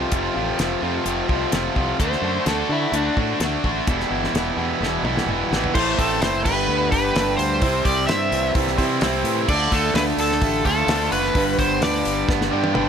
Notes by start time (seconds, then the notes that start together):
Already playing: F2 C3 F3 A3 C4 F4
0.12 F1 F2 C3 F3 A3 C4 F4, kick, closed hi-hat
0.35 A1 F2 C3 F3 A3 C4 F4
0.59 F1 F2 C3 F3 A3 C4 F4, snare, closed hi-hat
0.80 F2 C3 F3 A3 C4 F4
1.04 F1 F2 C3 F3 A3 C4 F4, closed hi-hat
1.28 C2 F2 C3 F3 A3 C4 F4, kick
1.51 F1 F2 C3 F3 A3 C4 F4, snare, closed hi-hat
1.75 C2 F2 C3 F3 A3 C4 F4, kick
1.99 D2 D3 A3 D4 F#4 C5, kick, closed hi-hat
2.12 snare
2.22 F#2 D3 A3 D4 F#4
2.46 D2 D3 A3 D4 F#4 A4, snare, closed hi-hat
2.69 D3 A3 D4 E4 F#4
2.92 D2 D3 A3 D4 F#4, closed hi-hat
3.17 A2 D3 A3 D4 F#4, kick
3.40 D2 D3 A3 D4 F#4, snare, closed hi-hat
3.64 A1 D3 A3 D4 F#4, kick
3.87 E1 E2 B2 E3 G3 B3 E4, kick, closed hi-hat
4.00 snare
4.10 G1 E2 B2 E3 G3 B3 E4
4.24 snare
4.33 E1 E2 B2 E3 G3 B3 E4, snare, closed hi-hat
4.56 E2 B2 E3 G3 B3 E4
4.79 E1 E2 B2 E3 G3 B3 E4
4.83 snare
5.03 B1 E2 B2 E3 G3 B3 E4, mid tom
5.17 snare
5.26 E1 E2 B2 E3 G3 B3, mid tom
5.31 E4
5.51 G#1 E2 B2 E3 G3 B3 E4, snare
5.64 floor tom
5.74 A1 A2 E3 A3 E4 A4 C5, kick, crash
5.98 A1 C4 A4, kick, open hi-hat
6.21 F#1 E4 A4 C5, snare, open hi-hat
6.45 G1 G2 D3 G3 D4 G4 B4, kick, crash
6.68 D2 B3
6.92 G1 D4 G4 B4, kick, open hi-hat
7.15 G1 D4 G4 A4, snare, open hi-hat
7.37 D2 G3 C5, open hi-hat
7.62 C2 C3 G3 C4 E4 G4 C5, kick, open hi-hat
7.85 C2 G3 D5, kick, open hi-hat
8.07 G2 C4 E4 G4 C5 E5, snare, open hi-hat
8.32 C2 E3, open hi-hat
8.55 C2 G3 E4 G4 C5, kick, open hi-hat
8.67 snare
8.78 C3 G3 C4 E4 G4 C5, kick, open hi-hat
9.01 C2 C3 G3 C4 E4 G4 C5, snare, open hi-hat
9.23 A2 E3, open hi-hat
9.48 D2 D3 A3 D4 F4 A4 D5, kick, crash
9.71 D2 A3 A4, kick, open hi-hat
9.94 D2 D4 F4 A4 B4, snare, open hi-hat
10.17 D2 D3 A4, open hi-hat
10.31 snare
10.40 A1 A3 D4 F4 G4, kick, open hi-hat
10.64 D2 D3 A3 D4 F4 A4, kick, open hi-hat
10.87 D2 D3 A3 D4 F4 A4, snare, open hi-hat
11.11 F#1 D3 B4, open hi-hat
11.25 snare
11.34 G1 G2 D3 G3 D4 G4 B4, kick, open hi-hat
11.59 G1 B3 C5, kick, open hi-hat
11.81 D2 D4 G4 B4 D5, snare, open hi-hat
12.05 G1 G3, open hi-hat
12.27 G1 B3 D4 G4 B4, kick, snare
12.41 snare
12.50 G2 D3 G3 D4 G4 D5
12.64 high tom
12.73 G1 G2 D3 G3 D4 G4 B4, mid tom